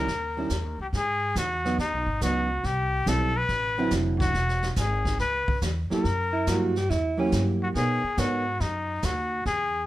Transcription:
Already playing: muted trumpet A#4
0.07 upright bass D#2, brush sweep, kick, snare
0.37 hollow-body jazz guitar D#3 G3 C#4 E4
0.50 upright bass E2, kick, snare, hi-hat pedal
0.64 upright bass D#2
0.78 upright bass C#2, muted trumpet G4
0.93 upright bass G#2, muted trumpet G#4, brush sweep, kick, snare
1.36 upright bass E2, muted trumpet F#4, kick, snare, hi-hat pedal
1.65 hollow-body jazz guitar F#3 B3 D#4, snare
1.78 upright bass D#2, muted trumpet D#4, brush sweep, kick, snare
1.93 upright bass B1
2.06 upright bass G#1
2.21 upright bass C#2, hollow-body jazz guitar F#3 B3 D#4, muted trumpet F#4, kick, snare, hi-hat pedal
2.64 upright bass C2, muted trumpet G4, brush sweep, kick, snare
3.06 upright bass B1, hollow-body jazz guitar G3 C4 E4, muted trumpet A4, kick, snare, hi-hat pedal
3.37 muted trumpet B4
3.49 upright bass A1, brush sweep, kick, snare
3.78 hollow-body jazz guitar D3 F#3 C4 E4
3.91 upright bass F1, kick, snare, hi-hat pedal
4.20 muted trumpet F#4, kick, snare
4.34 upright bass E1, brush sweep, kick, snare
4.49 snare
4.62 snare
4.76 upright bass G#1, muted trumpet G#4, kick, snare, hi-hat pedal
5.05 kick, snare
5.19 upright bass C#2, muted trumpet B4, brush sweep, kick, snare
5.48 muted upright bass stroke, kick
5.62 upright bass E2, kick, snare, hi-hat pedal
5.90 hollow-body jazz guitar F#3 A#3 E4 G4, muted trumpet A#4, muted upright bass stroke, snare
6.04 upright bass F#2, brush sweep, kick, snare
6.33 alto saxophone E4
6.47 upright bass G2, hollow-body jazz guitar F#3 A#3 E4 G4, alto saxophone F#4, kick, snare, hi-hat pedal
6.76 alto saxophone G4, snare
6.90 upright bass E2, alto saxophone E4, brush sweep, kick, snare
7.17 hollow-body jazz guitar F#3 A#3 E4 G4, alto saxophone C#4
7.32 upright bass G2, kick, snare, hi-hat pedal
7.63 muted trumpet F#4
7.75 upright bass B2, hollow-body jazz guitar B3 D#4 A#4 C#5, muted trumpet G#4, brush sweep, kick, snare
8.04 muted upright bass stroke
8.17 upright bass G#2, hollow-body jazz guitar B3 D#4 A#4 C#5, muted trumpet F#4, kick, snare, hi-hat pedal
8.60 upright bass F#2, muted trumpet D#4, brush sweep, kick, snare
9.02 upright bass D#2, muted trumpet F#4, kick, snare, hi-hat pedal
9.46 upright bass E2, muted trumpet G#4, brush sweep, kick, snare

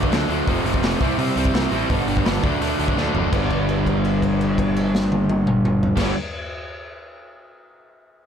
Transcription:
Already playing: overdriven electric guitar D3 F#3 A3 D4
0.03 kick
0.11 picked electric bass D2, overdriven electric guitar D3 F#3 A3 D4, snare, open hi-hat
0.29 picked electric bass D2, overdriven electric guitar D3 F#3 A3 D4, open hi-hat
0.47 picked electric bass F1, overdriven electric guitar F2 C3 F3 A3 C4, kick, open hi-hat
0.64 picked electric bass F1, overdriven electric guitar F2 C3 F3 A3 C4, open hi-hat
0.74 kick
0.82 picked electric bass F1, overdriven electric guitar F2 C3 F3 A3 C4, snare, open hi-hat
1.00 picked electric bass C2, overdriven electric guitar C3 G3 C4 E4, kick, open hi-hat
1.17 overdriven electric guitar C3 G3 C4 E4, picked electric bass C3, open hi-hat
1.36 picked electric bass C2, overdriven electric guitar C3 G3 C4 E4, open hi-hat
1.45 kick
1.53 picked electric bass C2, overdriven electric guitar C3 G3 C4 E4, snare, open hi-hat
1.71 picked electric bass A1, overdriven electric guitar C3 G3 C4 E4, open hi-hat
1.89 picked electric bass G1, overdriven electric guitar G2 D3 G3 B3 D4, kick, open hi-hat
2.07 picked electric bass G1, overdriven electric guitar G2 D3 G3 B3 D4, open hi-hat
2.17 kick
2.25 picked electric bass G1, overdriven electric guitar G2 D3 G3 B3 D4, snare, open hi-hat
2.43 picked electric bass D2, overdriven electric guitar D3 F#3 A3 D4, kick, open hi-hat
2.61 picked electric bass D2, overdriven electric guitar D3 F#3 A3 D4, open hi-hat
2.78 picked electric bass D2, overdriven electric guitar D3 F#3 A3 D4, open hi-hat
2.88 kick
2.96 picked electric bass D2, overdriven electric guitar D3 F#3 A3 D4, snare
3.14 picked electric bass F#1, overdriven electric guitar D3 F#3 A3 D4, floor tom
3.31 picked electric bass G1, overdriven electric guitar G2 D3 G3 B3 D4, kick, crash
3.50 kick, crash
3.69 crash
3.87 kick, crash
4.05 crash
4.22 kick, crash
4.41 crash
4.58 kick, crash
4.76 crash
4.95 snare
5.12 high tom
5.29 high tom
5.47 mid tom
5.65 mid tom
5.83 floor tom
5.96 picked electric bass G1, overdriven electric guitar G2 D3 G3 B3, kick, snare, crash
6.00 overdriven electric guitar D4

